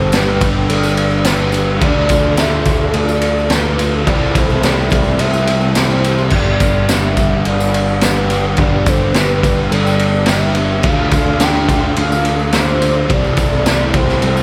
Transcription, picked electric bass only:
0, 0, Header, 1, 2, 480
1, 0, Start_track
1, 0, Tempo, 563910
1, 1551, Time_signature, 4, 2, 24, 8
1, 12282, End_track
2, 0, Start_track
2, 0, Title_t, "Picked electric bass"
2, 0, Program_c, 0, 34
2, 0, Note_on_c, 0, 31, 117
2, 559, Note_off_c, 0, 31, 0
2, 587, Note_on_c, 0, 31, 90
2, 1514, Note_off_c, 0, 31, 0
2, 1543, Note_on_c, 0, 38, 120
2, 2472, Note_off_c, 0, 38, 0
2, 2504, Note_on_c, 0, 38, 101
2, 3432, Note_off_c, 0, 38, 0
2, 3469, Note_on_c, 0, 36, 105
2, 4395, Note_off_c, 0, 36, 0
2, 4426, Note_on_c, 0, 36, 97
2, 5353, Note_off_c, 0, 36, 0
2, 5375, Note_on_c, 0, 31, 122
2, 6309, Note_off_c, 0, 31, 0
2, 6346, Note_on_c, 0, 31, 87
2, 7274, Note_off_c, 0, 31, 0
2, 7309, Note_on_c, 0, 31, 106
2, 8236, Note_off_c, 0, 31, 0
2, 8272, Note_on_c, 0, 31, 100
2, 9197, Note_off_c, 0, 31, 0
2, 9226, Note_on_c, 0, 38, 116
2, 10154, Note_off_c, 0, 38, 0
2, 10190, Note_on_c, 0, 38, 90
2, 11116, Note_off_c, 0, 38, 0
2, 11149, Note_on_c, 0, 36, 113
2, 12076, Note_off_c, 0, 36, 0
2, 12112, Note_on_c, 0, 36, 102
2, 12282, Note_off_c, 0, 36, 0
2, 12282, End_track
0, 0, End_of_file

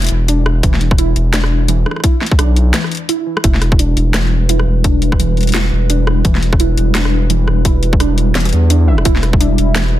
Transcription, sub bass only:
0, 0, Header, 1, 2, 480
1, 0, Start_track
1, 0, Key_signature, 1, "minor"
1, 0, Tempo, 350877
1, 867, Time_signature, 4, 2, 24, 8
1, 13673, End_track
2, 0, Start_track
2, 0, Title_t, "Sub bass"
2, 0, Program_c, 0, 38
2, 150, Note_on_c, 0, 28, 92
2, 853, Note_off_c, 0, 28, 0
2, 865, Note_on_c, 0, 28, 100
2, 1570, Note_off_c, 0, 28, 0
2, 1586, Note_on_c, 0, 28, 95
2, 2530, Note_off_c, 0, 28, 0
2, 3266, Note_on_c, 0, 35, 100
2, 3746, Note_off_c, 0, 35, 0
2, 4706, Note_on_c, 0, 28, 98
2, 5411, Note_off_c, 0, 28, 0
2, 5422, Note_on_c, 0, 28, 99
2, 6368, Note_off_c, 0, 28, 0
2, 6387, Note_on_c, 0, 28, 92
2, 7811, Note_off_c, 0, 28, 0
2, 7828, Note_on_c, 0, 28, 99
2, 8532, Note_off_c, 0, 28, 0
2, 8546, Note_on_c, 0, 28, 99
2, 9250, Note_off_c, 0, 28, 0
2, 9267, Note_on_c, 0, 28, 96
2, 10211, Note_off_c, 0, 28, 0
2, 10227, Note_on_c, 0, 28, 97
2, 11651, Note_off_c, 0, 28, 0
2, 11666, Note_on_c, 0, 40, 100
2, 12371, Note_off_c, 0, 40, 0
2, 12387, Note_on_c, 0, 28, 99
2, 13091, Note_off_c, 0, 28, 0
2, 13104, Note_on_c, 0, 28, 93
2, 13673, Note_off_c, 0, 28, 0
2, 13673, End_track
0, 0, End_of_file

